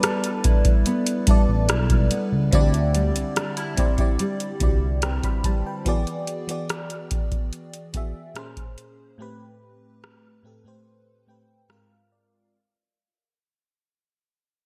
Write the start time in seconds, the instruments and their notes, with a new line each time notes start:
Already playing: fm electric piano G3 D4 E4 A4 B4 D5, nylon-string guitar G3 B3
0.03 nylon-string guitar A4, cross-stick, closed hi-hat
0.24 closed hi-hat
0.44 nylon-string guitar E4, kick, closed hi-hat
0.65 kick, closed hi-hat
0.86 nylon-string guitar B3, closed hi-hat
1.07 closed hi-hat
1.27 analog synth bass A1, fm electric piano G3 D4 E4 A4 D5, nylon-string guitar A4, kick, closed hi-hat
1.49 analog synth bass A1
1.69 analog synth bass B1, nylon-string guitar E4, cross-stick, closed hi-hat
1.90 kick, closed hi-hat
2.11 nylon-string guitar B3, closed hi-hat
2.32 analog synth bass C#2
2.51 analog synth bass D2, fm electric piano D3 C4 E4 F#4 D5, nylon-string guitar D3 E4, kick, closed hi-hat
2.61 fm electric piano G4
2.74 closed hi-hat
2.94 nylon-string guitar G3, closed hi-hat
3.16 analog synth bass C2, closed hi-hat
3.36 nylon-string guitar D4, cross-stick, closed hi-hat
3.57 nylon-string guitar E4, closed hi-hat
3.76 fm electric piano D3 C4 E4 G4 D5, nylon-string guitar C4, kick, closed hi-hat
3.97 fm electric piano D3 C4 E4 G4 D5, kick, closed hi-hat
4.19 nylon-string guitar G3, closed hi-hat
4.40 closed hi-hat
4.60 analog synth bass C2, fm electric piano D3 C4 E4 F#4 D5, nylon-string guitar E4, kick, closed hi-hat
4.69 fm electric piano G4
5.02 nylon-string guitar C4, fm electric piano B4 G5, cross-stick, closed hi-hat
5.23 fm electric piano D5 B5, kick, closed hi-hat
5.44 nylon-string guitar G3, fm electric piano C5 A5, kick, closed hi-hat
5.66 fm electric piano B4 G5
5.85 fm electric piano E3 B3 F#4 G#4 D5, kick, closed hi-hat
6.07 closed hi-hat
6.27 closed hi-hat
6.47 fm electric piano E3 B3 F#4 G#4 D5, closed hi-hat
6.69 cross-stick, closed hi-hat
6.90 closed hi-hat
7.11 kick, closed hi-hat
7.32 kick, closed hi-hat
7.53 closed hi-hat
7.74 closed hi-hat
7.93 fm electric piano E3 B3 F#4 G#4 E5, kick, closed hi-hat
8.34 fm electric piano A#2 A#3 C#4 G#4 C5, cross-stick, closed hi-hat
8.57 kick, closed hi-hat
8.78 closed hi-hat
9.18 fm electric piano A2 A3 C4 G4 B4
10.04 cross-stick
10.43 fm electric piano A2 A3 C4 G4 A4
10.64 fm electric piano A2 A3 C4 G4 C5
11.27 fm electric piano A2 A3 C4 G4 B4 G5
11.69 fm electric piano G#2 G#3 C4 F4 A#4 F5, cross-stick
12.12 fm electric piano D5